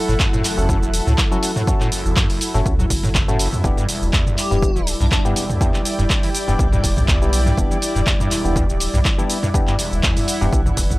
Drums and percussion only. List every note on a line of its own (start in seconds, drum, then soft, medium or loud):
0.09 shaker soft
0.20 kick loud
0.20 clap loud
0.20 shaker soft
0.33 mid tom medium
0.33 shaker soft
0.44 clap soft
0.44 open hi-hat loud
0.44 shaker medium
0.58 shaker soft
0.69 kick loud
0.69 shaker soft
0.83 shaker soft
0.94 open hi-hat loud
0.94 shaker medium
1.07 shaker soft
1.18 kick loud
1.18 clap loud
1.18 shaker soft
1.32 shaker soft
1.43 open hi-hat loud
1.43 shaker medium
1.56 mid tom medium
1.56 shaker soft
1.67 kick loud
1.67 shaker soft
1.81 clap soft
1.81 shaker soft
1.92 open hi-hat loud
1.92 shaker medium
2.06 shaker soft
2.16 kick loud
2.16 clap loud
2.16 shaker soft
2.30 open hi-hat medium
2.30 shaker soft
2.41 open hi-hat loud
2.41 shaker medium
2.55 shaker soft
2.66 kick loud
2.66 shaker soft
2.79 mid tom medium
2.79 shaker soft
2.90 kick medium
2.90 open hi-hat loud
2.90 shaker medium
3.04 mid tom medium
3.04 shaker soft
3.15 kick loud
3.15 clap loud
3.15 shaker soft
3.29 shaker soft
3.39 open hi-hat loud
3.39 shaker medium
3.53 mid tom loud
3.53 shaker soft
3.64 kick loud
3.64 shaker soft
3.78 shaker soft
3.89 open hi-hat loud
3.89 shaker medium
4.03 shaker soft
4.13 kick loud
4.13 clap loud
4.13 shaker soft
4.27 mid tom medium
4.27 shaker soft
4.38 clap soft
4.38 open hi-hat loud
4.38 shaker medium
4.52 shaker soft
4.62 kick loud
4.62 shaker soft
4.76 shaker soft
4.87 open hi-hat loud
4.87 shaker medium
5.01 shaker soft
5.12 kick loud
5.12 clap loud
5.12 shaker soft
5.26 shaker soft
5.36 open hi-hat loud
5.36 shaker medium
5.50 mid tom medium
5.50 shaker soft
5.61 kick loud
5.61 shaker soft
5.74 clap soft
5.74 shaker soft
5.85 open hi-hat loud
5.85 shaker medium
5.99 shaker soft
6.10 kick loud
6.10 clap loud
6.10 shaker soft
6.23 open hi-hat medium
6.23 shaker soft
6.35 open hi-hat loud
6.35 shaker medium
6.48 shaker soft
6.59 kick loud
6.59 shaker soft
6.72 mid tom medium
6.72 shaker soft
6.84 kick medium
6.84 open hi-hat loud
6.84 shaker medium
6.97 mid tom loud
6.97 shaker soft
7.08 kick loud
7.08 clap loud
7.08 shaker soft
7.22 shaker soft
7.33 open hi-hat loud
7.33 shaker medium
7.46 mid tom loud
7.46 shaker soft
7.57 kick loud
7.57 shaker soft
7.71 shaker soft
7.82 open hi-hat medium
7.82 shaker medium
7.96 shaker soft
8.07 kick loud
8.07 clap loud
8.07 shaker soft
8.20 mid tom medium
8.20 shaker soft
8.31 clap soft
8.31 open hi-hat loud
8.31 shaker medium
8.45 shaker soft
8.56 kick loud
8.56 shaker soft
8.70 shaker soft
8.80 open hi-hat loud
8.80 shaker medium
8.94 shaker soft
9.05 kick loud
9.05 clap loud
9.05 shaker soft
9.19 shaker soft
9.30 open hi-hat loud
9.30 shaker medium
9.43 mid tom medium
9.43 shaker soft
9.54 kick loud
9.54 shaker soft
9.67 clap soft
9.67 shaker soft
9.79 open hi-hat loud
9.79 shaker medium
9.93 shaker soft
10.03 kick loud
10.03 clap loud
10.03 shaker soft
10.17 mid tom medium
10.17 open hi-hat medium
10.17 shaker soft
10.28 open hi-hat loud
10.28 shaker medium
10.42 shaker soft
10.53 kick loud
10.53 shaker soft
10.66 mid tom medium
10.66 shaker soft
10.77 kick medium
10.77 open hi-hat loud
10.77 shaker medium
10.90 mid tom medium
10.90 shaker soft